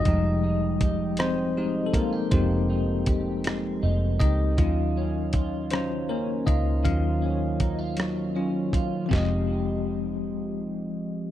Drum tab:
HH |x-xx-x|x-xx-x|x-xx-x|x-xx-x|
SD |---r--|---r--|---r--|---r--|
BD |o-o--o|o-o--o|o-o--o|o-o--o|

HH |------|
SD |o-----|
BD |o-----|